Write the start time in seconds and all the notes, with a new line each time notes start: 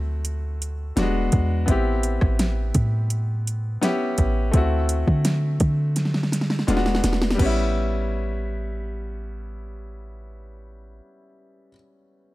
Already playing: D2 A3 C4 E4 F#4
0.25 closed hi-hat
0.62 closed hi-hat
0.96 E1 G3 B3 D4 F#4, snare, closed hi-hat
1.02 G#3
1.32 E2, kick, closed hi-hat
1.66 A1 B3 C4 E4, kick, closed hi-hat
1.71 G4
2.03 closed hi-hat
2.21 A1, kick, cross-stick
2.39 snare, closed hi-hat
2.74 A2, kick, closed hi-hat
3.10 closed hi-hat
3.47 closed hi-hat
3.81 B3 C#4 E4 G4, snare, closed hi-hat
4.18 A1, kick, closed hi-hat
4.52 D2 A3 C4 E4, kick, closed hi-hat
4.57 F#4
4.89 closed hi-hat
5.08 D3, kick
5.25 snare, closed hi-hat
5.60 D3, kick, closed hi-hat
5.96 snare, closed hi-hat
6.05 snare
6.14 snare
6.23 snare
6.32 snare, closed hi-hat
6.41 snare
6.50 snare
6.59 snare
6.67 E1 G#3 B3 D4 F4, snare, closed hi-hat
6.77 F#4, snare
6.86 snare
6.95 snare
7.04 E1, snare, closed hi-hat
7.13 snare
7.22 snare
7.31 snare
7.35 G3 B3
7.39 A1 C#4, kick, crash
7.46 E4